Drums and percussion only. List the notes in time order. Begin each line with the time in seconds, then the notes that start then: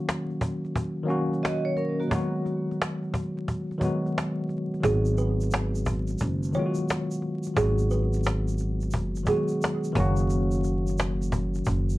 0.09 cajon slap
0.30 cajon slap
0.41 cajon bass
0.65 cajon slap
0.76 cajon bass
1.09 cajon slap
1.33 cajon slap
1.45 cajon slap
1.77 cajon slap
2.02 cajon slap
2.11 cajon bass
2.36 cajon slap
2.46 cajon slap
2.71 cajon slap
2.82 cajon slap
3.03 cajon slap
3.14 cajon bass
3.37 cajon slap
3.48 cajon bass
3.71 cajon slap
3.81 cajon bass
4.06 cajon slap
4.18 cajon slap
4.49 cajon slap
4.74 cajon slap
4.84 cajon bass, shaker
5.05 cajon slap, shaker
5.18 cajon slap, shaker
5.41 cajon slap, shaker
5.51 cajon slap, shaker
5.75 cajon slap, shaker
5.86 cajon bass, shaker
6.07 cajon slap, shaker
6.18 cajon bass, shaker
6.43 shaker
6.53 cajon slap, shaker
6.75 cajon slap, shaker
6.89 cajon slap, shaker
7.11 shaker
7.22 cajon slap
7.43 cajon slap, shaker
7.56 cajon bass, shaker
7.78 cajon slap, shaker
7.91 cajon slap, shaker
8.13 cajon slap, shaker
8.24 cajon slap, shaker
8.48 cajon slap, shaker
8.58 cajon slap, shaker
8.81 cajon slap, shaker
8.91 cajon bass, shaker
9.16 cajon slap, shaker
9.26 cajon bass, shaker
9.48 cajon slap, shaker
9.62 cajon slap, shaker
9.84 shaker
9.95 cajon bass
10.17 cajon slap, shaker
10.30 cajon slap, shaker
10.51 cajon slap, shaker
10.64 cajon slap, shaker
10.87 cajon slap, shaker
10.98 cajon slap, shaker
11.21 cajon slap, shaker
11.32 cajon bass, shaker
11.54 cajon slap, shaker
11.65 cajon bass, shaker
11.90 shaker